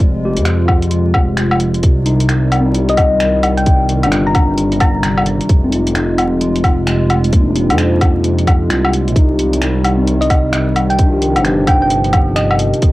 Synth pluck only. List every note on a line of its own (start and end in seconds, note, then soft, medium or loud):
2.89 3.13 D#5 medium
3.57 3.81 G5 medium
4.27 4.50 A#5 medium
4.81 5.27 A#5 medium
10.21 10.45 D#5 medium
10.90 11.14 G5 medium
11.68 11.77 G5 medium
11.82 11.88 G5 medium
12.36 12.88 D#5 medium